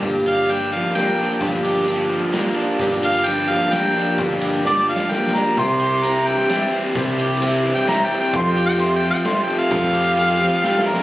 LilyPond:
<<
  \new Staff \with { instrumentName = "Harmonica" } { \time 3/4 \key g \dorian \tempo 4 = 130 r8 f''8 g''8 f''8 g''4 | r2. | r8 f''8 g''8 f''8 g''4 | r4 d''8 f''8 g''8 bes''8 |
c'''4 bes''8 g''4 r8 | r4 \tuplet 3/2 { r4 g''8 bes''8 g''8 g''8 } | \tuplet 3/2 { c'''8 g''8 g''8 c'''8 g''8 g''8 c'''8 g''8 f''8~ } | f''2~ f''8 bes'8 | }
  \new Staff \with { instrumentName = "Grand piano" } { \time 3/4 \key g \dorian r2. | r2. | r2. | r2. |
<g' c'' e''>4 <g' c'' e''>4 <g' c'' e''>4 | <g' c'' e''>4 <g' c'' e''>4 <g' c'' e''>4 | <g' a' f''>4 <g' a' e''>4 <g' a' e''>4 | <g' a' f''>4 <g' a' f''>4 <g' a' g''>4 | }
  \new Staff \with { instrumentName = "Twelve-string acoustic guitar" } { \time 3/4 \key g \dorian <g, d f bes d' g'>4 <f bes d' g'>8 <f bes d' g'>8 <f bes d' g'>8 <f bes d' g'>8 | <g, d f bes d' g'>4 <f bes d' g'>4 <f bes d' g'>8 <f bes d' g'>8 | <g, d f bes d' g'>4 <f bes d' g'>8 <f bes d' g'>8 <f bes d' g'>8 <f bes d' g'>8 | <g, d f bes d' g'>4 <f bes d' g'>4 <f bes d' g'>8 <f bes d' g'>8 |
<c g c' e' g'>4 <g c' e' g'>4 <g c' e' g'>8 <c' e' g'>8 | <c g c' e' g'>4 <g c' e' g'>8 <c' e' g'>8 <g c' e' g'>8 <c' e' g'>8 | <f a c' f' g'>4 <a c' f' g'>8 <c' f' g'>8 <a c' f' g'>8 <c' f' g'>8 | <f a c' f' g'>4 <a c' f' g'>8 <c' f' g'>8 <a c' f' g'>8 <c' f' g'>8 | }
  \new Staff \with { instrumentName = "Overdriven electric guitar" } { \time 3/4 \key g \dorian g,8 g'8 d'8 f8 bes8 d'8 | g,8 g'8 d'8 f8 bes8 d'8 | g,8 g'8 d'8 f8 bes8 d'8 | g,8 g'8 d'8 f8 bes8 d'8 |
c8 g'8 c'8 e8 g8 c'8 | c8 g'8 c'8 e8 g8 c'8 | f8 g'8 c'8 f8 a8 c'8 | f8 g'8 c'8 f8 a8 c'8 | }
  \new Staff \with { instrumentName = "Picked electric bass" } { \clef bass \time 3/4 \key g \dorian g,,2 r4 | g,,2 r4 | g,,2 r4 | g,,2 r4 |
c,2 r4 | c,2 r4 | f,2 r4 | f,2 r4 | }
  \new DrumStaff \with { instrumentName = "Drums" } \drummode { \time 3/4 <bd cymr>8 cymr8 cymr4 <cymr sn>4 | <bd cymr>8 cymr8 cymr4 <cymr sn>4 | <bd cymr>8 cymr8 cymr4 <cymr sn>4 | <bd cymr>8 cymr8 \tuplet 3/2 { sn8 r8 sn8 sn8 sn8 r8 } |
<bd cymr>8 cymr8 cymr4 <cymr sn>4 | <bd cymr>8 cymr8 cymr4 <cymr sn>4 | <bd cymr>8 cymr8 cymr4 <cymr sn>4 | <bd cymr>8 cymr8 cymr4 \tuplet 3/2 { sn8 sn8 sn8 } | }
>>